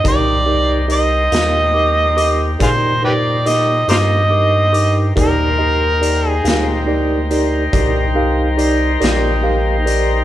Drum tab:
HH |x-xx-xx-xx-x|x-xx-xx-xx-x|
SD |---o----oo--|---o-----o--|
BD |o-----o-----|o-----o-----|